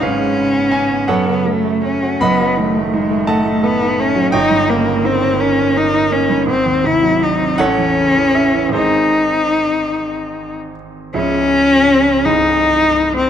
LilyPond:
<<
  \new Staff \with { instrumentName = "Cello" } { \time 6/8 \key fis \dorian \tempo 4. = 55 cis'4. b8 a8 cis'8 | \key gis \phrygian b8 a8 gis8 a8 b8 cis'8 | dis'8 ais8 bis8 cis'8 dis'8 cis'8 | bis8 e'8 dis'8 cis'4. |
dis'2~ dis'16 r8. | cis'4. dis'4~ dis'16 bis16 | }
  \new Staff \with { instrumentName = "Grand piano" } { \time 6/8 \key fis \dorian <b' cis'' eis''>4 gis''8 <a' cis'' fis''>4. | \key gis \phrygian <dis'' fis'' b''>4. <dis'' fis'' a''>4. | <cis'' dis'' g''>4. r4. | r4. <a' cis'' fis''>4 e''8 |
<dis' gis' bis'>2~ <dis' gis' bis'>8 r8 | r2. | }
  \new Staff \with { instrumentName = "Grand piano" } { \clef bass \time 6/8 \key fis \dorian <gis,, gis,>16 gis16 cis16 b16 cis'16 b16 fis,16 cis16 fis16 a16 cis'16 fis'16 | \key gis \phrygian <fis,, fis,>16 fis16 dis16 a16 dis'16 a16 a'16 dis'16 a'16 dis'16 a16 fis16 | g,,16 g,16 cis16 ais16 dis'16 cis'16 ais'16 cis'16 ais'16 dis'16 ais16 g,16 | gis,,16 dis,16 bis,16 fis16 dis'16 bis16 a,,16 e,16 cis16 e16 cis'16 e16 |
<gis,, dis gis bis>2. | <cis,, cis, e' gis' e''>4. <bis,,, bis,, gis' dis''>4. | }
>>